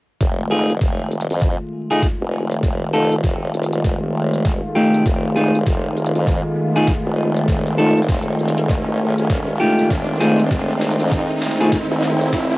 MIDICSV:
0, 0, Header, 1, 6, 480
1, 0, Start_track
1, 0, Tempo, 606061
1, 165, Time_signature, 4, 2, 24, 8
1, 9963, End_track
2, 0, Start_track
2, 0, Title_t, "Clean electric guitar"
2, 0, Program_c, 0, 27
2, 403, Note_on_c, 0, 68, 83
2, 407, Note_on_c, 0, 65, 70
2, 410, Note_on_c, 0, 63, 62
2, 413, Note_on_c, 0, 57, 65
2, 569, Note_off_c, 0, 57, 0
2, 569, Note_off_c, 0, 63, 0
2, 569, Note_off_c, 0, 65, 0
2, 569, Note_off_c, 0, 68, 0
2, 1510, Note_on_c, 0, 68, 97
2, 1514, Note_on_c, 0, 65, 74
2, 1516, Note_on_c, 0, 63, 76
2, 1520, Note_on_c, 0, 57, 73
2, 1629, Note_off_c, 0, 63, 0
2, 1629, Note_off_c, 0, 68, 0
2, 1630, Note_off_c, 0, 57, 0
2, 1630, Note_off_c, 0, 65, 0
2, 2324, Note_on_c, 0, 69, 93
2, 2327, Note_on_c, 0, 65, 72
2, 2329, Note_on_c, 0, 63, 70
2, 2333, Note_on_c, 0, 57, 67
2, 2489, Note_off_c, 0, 57, 0
2, 2489, Note_off_c, 0, 63, 0
2, 2489, Note_off_c, 0, 65, 0
2, 2489, Note_off_c, 0, 69, 0
2, 3764, Note_on_c, 0, 67, 101
2, 3766, Note_on_c, 0, 65, 84
2, 3770, Note_on_c, 0, 63, 76
2, 3773, Note_on_c, 0, 57, 88
2, 3993, Note_off_c, 0, 57, 0
2, 3993, Note_off_c, 0, 63, 0
2, 3993, Note_off_c, 0, 65, 0
2, 3993, Note_off_c, 0, 67, 0
2, 4243, Note_on_c, 0, 68, 82
2, 4246, Note_on_c, 0, 65, 64
2, 4249, Note_on_c, 0, 63, 66
2, 4254, Note_on_c, 0, 57, 64
2, 4409, Note_off_c, 0, 57, 0
2, 4409, Note_off_c, 0, 63, 0
2, 4409, Note_off_c, 0, 65, 0
2, 4409, Note_off_c, 0, 68, 0
2, 5352, Note_on_c, 0, 68, 98
2, 5355, Note_on_c, 0, 65, 79
2, 5358, Note_on_c, 0, 63, 73
2, 5361, Note_on_c, 0, 57, 76
2, 5470, Note_off_c, 0, 57, 0
2, 5470, Note_off_c, 0, 63, 0
2, 5470, Note_off_c, 0, 65, 0
2, 5470, Note_off_c, 0, 68, 0
2, 6162, Note_on_c, 0, 69, 96
2, 6166, Note_on_c, 0, 65, 73
2, 6169, Note_on_c, 0, 63, 75
2, 6172, Note_on_c, 0, 57, 77
2, 6328, Note_off_c, 0, 69, 0
2, 6329, Note_off_c, 0, 57, 0
2, 6329, Note_off_c, 0, 63, 0
2, 6329, Note_off_c, 0, 65, 0
2, 7601, Note_on_c, 0, 67, 106
2, 7605, Note_on_c, 0, 65, 78
2, 7609, Note_on_c, 0, 63, 72
2, 7613, Note_on_c, 0, 57, 83
2, 7832, Note_off_c, 0, 57, 0
2, 7832, Note_off_c, 0, 65, 0
2, 7832, Note_off_c, 0, 67, 0
2, 7833, Note_off_c, 0, 63, 0
2, 8080, Note_on_c, 0, 68, 83
2, 8085, Note_on_c, 0, 65, 62
2, 8089, Note_on_c, 0, 63, 65
2, 8092, Note_on_c, 0, 57, 68
2, 8248, Note_off_c, 0, 57, 0
2, 8248, Note_off_c, 0, 63, 0
2, 8248, Note_off_c, 0, 65, 0
2, 8249, Note_off_c, 0, 68, 0
2, 9190, Note_on_c, 0, 68, 95
2, 9193, Note_on_c, 0, 65, 80
2, 9196, Note_on_c, 0, 63, 72
2, 9200, Note_on_c, 0, 57, 72
2, 9309, Note_off_c, 0, 57, 0
2, 9309, Note_off_c, 0, 63, 0
2, 9309, Note_off_c, 0, 65, 0
2, 9309, Note_off_c, 0, 68, 0
2, 9963, End_track
3, 0, Start_track
3, 0, Title_t, "Analog synth pad"
3, 0, Program_c, 1, 89
3, 163, Note_on_c, 1, 51, 80
3, 163, Note_on_c, 1, 56, 70
3, 163, Note_on_c, 1, 57, 69
3, 163, Note_on_c, 1, 65, 88
3, 7842, Note_off_c, 1, 65, 0
3, 7842, Note_on_c, 1, 60, 85
3, 9963, Note_off_c, 1, 51, 0
3, 9963, Note_off_c, 1, 56, 0
3, 9963, Note_off_c, 1, 57, 0
3, 9963, Note_off_c, 1, 60, 0
3, 9963, End_track
4, 0, Start_track
4, 0, Title_t, "Wobble bass"
4, 0, Program_c, 2, 39
4, 164, Note_on_c, 2, 29, 93
4, 529, Note_off_c, 2, 29, 0
4, 553, Note_on_c, 2, 29, 97
4, 630, Note_off_c, 2, 29, 0
4, 643, Note_on_c, 2, 29, 92
4, 1009, Note_off_c, 2, 29, 0
4, 1032, Note_on_c, 2, 41, 92
4, 1249, Note_off_c, 2, 41, 0
4, 1753, Note_on_c, 2, 29, 89
4, 2070, Note_off_c, 2, 29, 0
4, 2084, Note_on_c, 2, 29, 94
4, 2449, Note_off_c, 2, 29, 0
4, 2472, Note_on_c, 2, 29, 97
4, 2550, Note_off_c, 2, 29, 0
4, 2563, Note_on_c, 2, 29, 94
4, 2790, Note_off_c, 2, 29, 0
4, 2804, Note_on_c, 2, 29, 93
4, 3170, Note_off_c, 2, 29, 0
4, 3194, Note_on_c, 2, 29, 91
4, 3650, Note_off_c, 2, 29, 0
4, 4005, Note_on_c, 2, 29, 97
4, 4370, Note_off_c, 2, 29, 0
4, 4394, Note_on_c, 2, 29, 95
4, 4471, Note_off_c, 2, 29, 0
4, 4485, Note_on_c, 2, 29, 95
4, 4850, Note_off_c, 2, 29, 0
4, 4874, Note_on_c, 2, 41, 93
4, 5090, Note_off_c, 2, 41, 0
4, 5593, Note_on_c, 2, 29, 92
4, 5910, Note_off_c, 2, 29, 0
4, 5924, Note_on_c, 2, 29, 95
4, 6289, Note_off_c, 2, 29, 0
4, 6312, Note_on_c, 2, 29, 95
4, 6390, Note_off_c, 2, 29, 0
4, 6404, Note_on_c, 2, 29, 93
4, 6630, Note_off_c, 2, 29, 0
4, 6645, Note_on_c, 2, 29, 93
4, 7010, Note_off_c, 2, 29, 0
4, 7032, Note_on_c, 2, 33, 93
4, 7249, Note_off_c, 2, 33, 0
4, 7271, Note_on_c, 2, 27, 98
4, 7589, Note_off_c, 2, 27, 0
4, 7843, Note_on_c, 2, 29, 95
4, 8209, Note_off_c, 2, 29, 0
4, 8230, Note_on_c, 2, 29, 99
4, 8309, Note_off_c, 2, 29, 0
4, 8322, Note_on_c, 2, 29, 94
4, 8688, Note_off_c, 2, 29, 0
4, 8710, Note_on_c, 2, 41, 95
4, 8928, Note_off_c, 2, 41, 0
4, 9430, Note_on_c, 2, 29, 96
4, 9749, Note_off_c, 2, 29, 0
4, 9763, Note_on_c, 2, 29, 96
4, 9963, Note_off_c, 2, 29, 0
4, 9963, End_track
5, 0, Start_track
5, 0, Title_t, "Riser"
5, 0, Program_c, 3, 103
5, 164, Note_on_c, 3, 60, 73
5, 9963, Note_off_c, 3, 60, 0
5, 9963, End_track
6, 0, Start_track
6, 0, Title_t, "Drums"
6, 163, Note_on_c, 9, 38, 46
6, 163, Note_on_c, 9, 42, 64
6, 164, Note_on_c, 9, 36, 91
6, 243, Note_off_c, 9, 36, 0
6, 243, Note_off_c, 9, 38, 0
6, 243, Note_off_c, 9, 42, 0
6, 404, Note_on_c, 9, 42, 37
6, 483, Note_off_c, 9, 42, 0
6, 553, Note_on_c, 9, 42, 52
6, 632, Note_off_c, 9, 42, 0
6, 643, Note_on_c, 9, 36, 90
6, 644, Note_on_c, 9, 38, 45
6, 644, Note_on_c, 9, 42, 62
6, 723, Note_off_c, 9, 36, 0
6, 723, Note_off_c, 9, 38, 0
6, 723, Note_off_c, 9, 42, 0
6, 883, Note_on_c, 9, 42, 47
6, 957, Note_off_c, 9, 42, 0
6, 957, Note_on_c, 9, 42, 61
6, 1032, Note_off_c, 9, 42, 0
6, 1032, Note_on_c, 9, 42, 54
6, 1046, Note_off_c, 9, 42, 0
6, 1046, Note_on_c, 9, 42, 50
6, 1107, Note_off_c, 9, 42, 0
6, 1107, Note_on_c, 9, 42, 40
6, 1122, Note_off_c, 9, 42, 0
6, 1122, Note_on_c, 9, 38, 46
6, 1122, Note_on_c, 9, 42, 63
6, 1123, Note_on_c, 9, 36, 91
6, 1201, Note_off_c, 9, 38, 0
6, 1201, Note_off_c, 9, 42, 0
6, 1202, Note_off_c, 9, 36, 0
6, 1511, Note_on_c, 9, 42, 52
6, 1590, Note_off_c, 9, 42, 0
6, 1603, Note_on_c, 9, 36, 94
6, 1603, Note_on_c, 9, 38, 48
6, 1603, Note_on_c, 9, 42, 64
6, 1682, Note_off_c, 9, 38, 0
6, 1682, Note_off_c, 9, 42, 0
6, 1683, Note_off_c, 9, 36, 0
6, 1991, Note_on_c, 9, 42, 50
6, 2070, Note_off_c, 9, 42, 0
6, 2082, Note_on_c, 9, 38, 49
6, 2082, Note_on_c, 9, 42, 65
6, 2084, Note_on_c, 9, 36, 89
6, 2161, Note_off_c, 9, 38, 0
6, 2161, Note_off_c, 9, 42, 0
6, 2163, Note_off_c, 9, 36, 0
6, 2323, Note_on_c, 9, 42, 38
6, 2402, Note_off_c, 9, 42, 0
6, 2471, Note_on_c, 9, 42, 53
6, 2550, Note_off_c, 9, 42, 0
6, 2563, Note_on_c, 9, 38, 50
6, 2563, Note_on_c, 9, 42, 65
6, 2564, Note_on_c, 9, 36, 92
6, 2642, Note_off_c, 9, 38, 0
6, 2642, Note_off_c, 9, 42, 0
6, 2643, Note_off_c, 9, 36, 0
6, 2803, Note_on_c, 9, 42, 50
6, 2877, Note_off_c, 9, 42, 0
6, 2877, Note_on_c, 9, 42, 64
6, 2951, Note_off_c, 9, 42, 0
6, 2951, Note_on_c, 9, 42, 53
6, 3030, Note_off_c, 9, 42, 0
6, 3044, Note_on_c, 9, 36, 95
6, 3044, Note_on_c, 9, 38, 54
6, 3044, Note_on_c, 9, 42, 66
6, 3123, Note_off_c, 9, 38, 0
6, 3123, Note_off_c, 9, 42, 0
6, 3124, Note_off_c, 9, 36, 0
6, 3432, Note_on_c, 9, 42, 52
6, 3511, Note_off_c, 9, 42, 0
6, 3523, Note_on_c, 9, 38, 56
6, 3523, Note_on_c, 9, 42, 69
6, 3525, Note_on_c, 9, 36, 91
6, 3602, Note_off_c, 9, 38, 0
6, 3602, Note_off_c, 9, 42, 0
6, 3604, Note_off_c, 9, 36, 0
6, 3913, Note_on_c, 9, 42, 51
6, 3992, Note_off_c, 9, 42, 0
6, 4005, Note_on_c, 9, 36, 94
6, 4005, Note_on_c, 9, 38, 56
6, 4005, Note_on_c, 9, 42, 64
6, 4084, Note_off_c, 9, 36, 0
6, 4084, Note_off_c, 9, 38, 0
6, 4084, Note_off_c, 9, 42, 0
6, 4245, Note_on_c, 9, 42, 36
6, 4324, Note_off_c, 9, 42, 0
6, 4393, Note_on_c, 9, 42, 52
6, 4473, Note_off_c, 9, 42, 0
6, 4484, Note_on_c, 9, 38, 58
6, 4484, Note_on_c, 9, 42, 64
6, 4485, Note_on_c, 9, 36, 96
6, 4564, Note_off_c, 9, 36, 0
6, 4564, Note_off_c, 9, 38, 0
6, 4564, Note_off_c, 9, 42, 0
6, 4724, Note_on_c, 9, 42, 49
6, 4799, Note_off_c, 9, 42, 0
6, 4799, Note_on_c, 9, 42, 64
6, 4873, Note_off_c, 9, 42, 0
6, 4873, Note_on_c, 9, 42, 52
6, 4952, Note_off_c, 9, 42, 0
6, 4964, Note_on_c, 9, 38, 60
6, 4964, Note_on_c, 9, 42, 64
6, 4965, Note_on_c, 9, 36, 93
6, 5043, Note_off_c, 9, 38, 0
6, 5043, Note_off_c, 9, 42, 0
6, 5044, Note_off_c, 9, 36, 0
6, 5352, Note_on_c, 9, 42, 53
6, 5431, Note_off_c, 9, 42, 0
6, 5443, Note_on_c, 9, 38, 64
6, 5443, Note_on_c, 9, 42, 69
6, 5445, Note_on_c, 9, 36, 94
6, 5523, Note_off_c, 9, 38, 0
6, 5523, Note_off_c, 9, 42, 0
6, 5524, Note_off_c, 9, 36, 0
6, 5832, Note_on_c, 9, 42, 51
6, 5911, Note_off_c, 9, 42, 0
6, 5923, Note_on_c, 9, 38, 66
6, 5923, Note_on_c, 9, 42, 63
6, 5924, Note_on_c, 9, 36, 92
6, 6002, Note_off_c, 9, 38, 0
6, 6002, Note_off_c, 9, 42, 0
6, 6004, Note_off_c, 9, 36, 0
6, 6072, Note_on_c, 9, 42, 35
6, 6151, Note_off_c, 9, 42, 0
6, 6163, Note_on_c, 9, 42, 35
6, 6243, Note_off_c, 9, 42, 0
6, 6312, Note_on_c, 9, 42, 47
6, 6358, Note_off_c, 9, 42, 0
6, 6358, Note_on_c, 9, 42, 38
6, 6403, Note_off_c, 9, 42, 0
6, 6403, Note_on_c, 9, 38, 64
6, 6403, Note_on_c, 9, 42, 31
6, 6404, Note_on_c, 9, 36, 96
6, 6441, Note_off_c, 9, 42, 0
6, 6441, Note_on_c, 9, 42, 36
6, 6477, Note_off_c, 9, 42, 0
6, 6477, Note_on_c, 9, 42, 43
6, 6483, Note_off_c, 9, 38, 0
6, 6484, Note_off_c, 9, 36, 0
6, 6514, Note_off_c, 9, 42, 0
6, 6514, Note_on_c, 9, 42, 51
6, 6593, Note_off_c, 9, 42, 0
6, 6644, Note_on_c, 9, 42, 46
6, 6718, Note_off_c, 9, 42, 0
6, 6718, Note_on_c, 9, 42, 63
6, 6793, Note_off_c, 9, 42, 0
6, 6793, Note_on_c, 9, 42, 51
6, 6872, Note_off_c, 9, 42, 0
6, 6884, Note_on_c, 9, 36, 96
6, 6884, Note_on_c, 9, 38, 67
6, 6884, Note_on_c, 9, 42, 61
6, 6963, Note_off_c, 9, 36, 0
6, 6963, Note_off_c, 9, 38, 0
6, 6963, Note_off_c, 9, 42, 0
6, 7271, Note_on_c, 9, 42, 52
6, 7350, Note_off_c, 9, 42, 0
6, 7363, Note_on_c, 9, 36, 94
6, 7363, Note_on_c, 9, 38, 70
6, 7363, Note_on_c, 9, 42, 67
6, 7442, Note_off_c, 9, 36, 0
6, 7442, Note_off_c, 9, 38, 0
6, 7442, Note_off_c, 9, 42, 0
6, 7751, Note_on_c, 9, 42, 50
6, 7830, Note_off_c, 9, 42, 0
6, 7842, Note_on_c, 9, 38, 72
6, 7842, Note_on_c, 9, 42, 62
6, 7843, Note_on_c, 9, 36, 93
6, 7922, Note_off_c, 9, 36, 0
6, 7922, Note_off_c, 9, 38, 0
6, 7922, Note_off_c, 9, 42, 0
6, 8083, Note_on_c, 9, 38, 75
6, 8083, Note_on_c, 9, 46, 65
6, 8162, Note_off_c, 9, 38, 0
6, 8162, Note_off_c, 9, 46, 0
6, 8232, Note_on_c, 9, 42, 49
6, 8311, Note_off_c, 9, 42, 0
6, 8323, Note_on_c, 9, 36, 95
6, 8323, Note_on_c, 9, 38, 74
6, 8323, Note_on_c, 9, 42, 58
6, 8402, Note_off_c, 9, 36, 0
6, 8402, Note_off_c, 9, 38, 0
6, 8402, Note_off_c, 9, 42, 0
6, 8562, Note_on_c, 9, 38, 73
6, 8562, Note_on_c, 9, 42, 45
6, 8637, Note_off_c, 9, 42, 0
6, 8637, Note_on_c, 9, 42, 61
6, 8642, Note_off_c, 9, 38, 0
6, 8712, Note_off_c, 9, 42, 0
6, 8712, Note_on_c, 9, 42, 47
6, 8723, Note_off_c, 9, 42, 0
6, 8723, Note_on_c, 9, 42, 39
6, 8773, Note_off_c, 9, 42, 0
6, 8773, Note_on_c, 9, 42, 31
6, 8803, Note_off_c, 9, 42, 0
6, 8803, Note_on_c, 9, 36, 95
6, 8803, Note_on_c, 9, 38, 75
6, 8803, Note_on_c, 9, 42, 61
6, 8882, Note_off_c, 9, 36, 0
6, 8883, Note_off_c, 9, 38, 0
6, 8883, Note_off_c, 9, 42, 0
6, 9042, Note_on_c, 9, 38, 80
6, 9042, Note_on_c, 9, 46, 64
6, 9080, Note_off_c, 9, 38, 0
6, 9080, Note_on_c, 9, 38, 64
6, 9117, Note_off_c, 9, 38, 0
6, 9117, Note_on_c, 9, 38, 53
6, 9122, Note_off_c, 9, 46, 0
6, 9154, Note_off_c, 9, 38, 0
6, 9154, Note_on_c, 9, 38, 43
6, 9192, Note_on_c, 9, 42, 51
6, 9233, Note_off_c, 9, 38, 0
6, 9271, Note_off_c, 9, 42, 0
6, 9283, Note_on_c, 9, 38, 82
6, 9283, Note_on_c, 9, 42, 62
6, 9284, Note_on_c, 9, 36, 93
6, 9362, Note_off_c, 9, 38, 0
6, 9362, Note_off_c, 9, 42, 0
6, 9363, Note_off_c, 9, 36, 0
6, 9524, Note_on_c, 9, 38, 78
6, 9603, Note_off_c, 9, 38, 0
6, 9673, Note_on_c, 9, 42, 48
6, 9752, Note_off_c, 9, 42, 0
6, 9764, Note_on_c, 9, 36, 91
6, 9764, Note_on_c, 9, 38, 83
6, 9764, Note_on_c, 9, 42, 62
6, 9843, Note_off_c, 9, 36, 0
6, 9843, Note_off_c, 9, 38, 0
6, 9843, Note_off_c, 9, 42, 0
6, 9963, End_track
0, 0, End_of_file